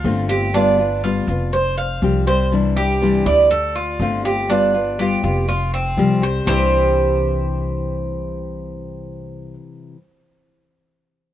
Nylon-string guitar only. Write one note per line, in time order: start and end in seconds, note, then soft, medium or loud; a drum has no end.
0.04 0.28 D3 medium
0.04 0.29 A3 medium
0.04 0.29 C4 medium
0.04 0.28 F4 medium
0.29 0.54 A3 soft
0.29 0.54 C4 soft
0.29 0.53 F4 medium
0.54 0.78 G3 medium
0.54 0.79 B3 medium
0.54 0.78 F4 medium
0.79 1.03 B3 soft
0.79 1.02 F4 soft
1.03 1.27 G3 medium
1.03 1.28 B3 medium
1.03 1.27 F4 medium
1.28 1.53 B3 soft
1.28 1.52 F4 soft
1.53 muted nylon-string guitar stroke medium
2.02 2.26 F3 medium
2.02 2.26 G3 medium
2.02 2.27 C4 medium
2.02 2.26 G4 medium
2.27 2.51 G3 soft
2.27 2.51 C4 soft
2.27 2.51 G4 soft
2.51 2.75 C3 medium
2.51 2.76 E3 medium
2.51 2.76 G3 medium
2.51 2.76 D4 medium
2.51 2.75 E4 medium
2.76 3.01 G3 soft
2.76 3.01 D4 soft
2.76 3.00 E4 soft
3.01 3.25 C3 medium
3.01 3.25 E3 medium
3.01 3.25 G3 medium
3.01 3.25 D4 medium
3.01 3.24 E4 medium
3.25 3.51 G3 soft
3.25 3.50 D4 soft
3.25 3.49 E4 medium
3.50 muted nylon-string guitar stroke medium
4.00 4.23 D3 medium
4.00 4.24 A3 medium
4.00 4.24 C4 medium
4.00 4.23 F4 medium
4.24 4.48 A3 soft
4.24 4.49 C4 soft
4.24 4.48 F4 medium
4.49 4.73 G3 medium
4.49 4.74 B3 medium
4.49 4.73 F4 medium
4.74 4.99 B3 soft
4.74 4.98 F4 soft
4.99 5.22 G3 medium
4.99 5.23 B3 medium
4.99 5.22 F4 medium
5.24 5.48 B3 soft
5.24 5.47 F4 medium
5.48 muted nylon-string guitar stroke medium
5.97 6.21 F3 medium
5.97 6.22 G3 medium
5.97 6.21 C4 medium
5.97 6.20 G4 medium
6.22 6.46 G3 soft
6.22 6.46 C4 soft
6.22 6.46 G4 medium
6.45 9.95 C3 medium
6.45 9.97 E3 medium
6.45 9.97 G3 medium
6.45 9.99 D4 medium
6.45 9.99 E4 medium